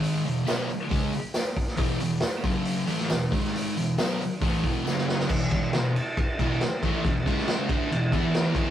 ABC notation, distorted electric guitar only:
X:1
M:4/4
L:1/8
Q:1/4=137
K:E
V:1 name="Distorted electric guitar" clef=bass
[G,,D,G,] [E,,B,,] [B,,F,B,] z [C,G,C] z3 | [E,,B,,E,] [E,,B,,] z [F,,C,F,]2 [A,,E,A,] [E,,B,,] [G,,D,G,]- | [G,,D,G,] [E,,B,,] [B,,F,B,] z [A,,E,A,] [E,,B,,E,] [F,,C,F,]2 | [E,,B,,] [E,,B,,] [E,,B,,] z2 [E,,B,,E,] z [A,,E,A,] |
[E,,B,,] [C,G,C]2 [=D,A,=D] [E,,B,,] [E,B,E]2 [E,,B,,E,] |]